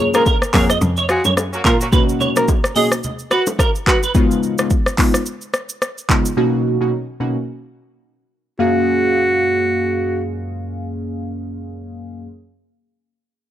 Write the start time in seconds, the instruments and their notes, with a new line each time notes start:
Already playing: cello F#2, synth keys A#3 C#4 F4 G#4
0.14 horn section G#3 C#4 F4 G#4, synth keys A#3 C#4 F4 G#4, clean electric guitar A#4, alto saxophone A#4, cross-stick, low bongo, shaker
0.26 clean electric guitar A#4, kick, high bongo, shaker
0.42 cross-stick, shaker
0.53 cello F2, synth keys A#3 C#4 F4 G#4, horn section A#3 F#4 A#4, alto saxophone G#4, clean electric guitar C#5, kick, clap, open hi-hat, shaker
0.70 clean electric guitar D#5, cross-stick, shaker
0.81 cello F2, low conga, shaker
0.97 clean electric guitar C#5, shaker
1.09 horn section G#3 C#4 F4 G#4, alto saxophone F#4, cross-stick, shaker
1.24 cello F#2, clean electric guitar C#5, high bongo, low bongo, shaker
1.37 cross-stick, high bongo, shaker
1.53 horn section F#3 A#3 C#4 F#4, shaker
1.65 cello A#2, alto saxophone F4, clean electric guitar A#4, kick, clap, low bongo, shaker
1.81 horn section F#3 A#3 C#4 F#4, shaker
1.92 synth keys B2 A#3 C#4 D#4 F#4, clean electric guitar B4, kick, low conga, shaker
2.09 shaker
2.20 clean electric guitar C#5, low bongo, low conga, shaker
2.36 synth keys B2 A#3 C#4 D#4 F#4, alto saxophone A#4, cross-stick, low bongo, shaker
2.48 kick, high bongo, shaker
2.64 cross-stick, shaker
2.76 synth keys B2 A#3 C#4 D#4 F#4, alto saxophone G#4, clean electric guitar D#5, open hi-hat, shaker
2.92 cross-stick, shaker
3.03 low conga, shaker
3.19 shaker
3.31 alto saxophone F#4, clean electric guitar B4, cross-stick, shaker
3.47 high bongo, low bongo, shaker
3.59 clean electric guitar A#4, kick, cross-stick, high bongo, shaker
3.75 shaker
3.87 alto saxophone F#4, clean electric guitar B4, kick, clap, low bongo, shaker
4.03 clean electric guitar B4, shaker
4.15 synth keys C#3 G#3 B3 D#4 F4, kick, shaker
4.31 shaker
4.43 shaker
4.58 synth keys C#3 G#3 B3 D#4 F4, cross-stick, shaker
4.70 kick, shaker
4.86 cross-stick, shaker
4.98 synth keys C#3 G#3 B3 D#4 F4, kick, clap, open hi-hat, shaker
5.14 cross-stick, shaker
5.26 shaker
5.41 shaker
5.54 cross-stick, shaker
5.69 shaker
5.82 cross-stick, shaker
5.98 shaker
6.09 synth keys C#3 G#3 B3 D#4 F4, kick, clap, shaker
6.25 shaker
6.37 synth keys B2 A#3 C#4 D#4 F#4
6.81 synth keys B2 A#3 C#4 D#4 F#4
7.20 synth keys B2 A#3 C#4 D#4 F#4
8.59 synth keys F#2 A#3 C#4 G#4 F5, alto saxophone F#4